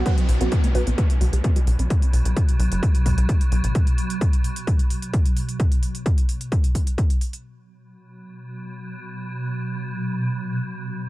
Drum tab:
HH |xxoxxxoxxxoxxxox|xxoxxxoxxxoxxxox|xxoxxxoxxxoxxxox|xxoxxxoxxxoxxxox|
BD |o---o---o---o---|o---o---o-o-o---|o---o---o---o---|o---o---o-o-o---|

HH |----------------|----------------|
BD |----------------|----------------|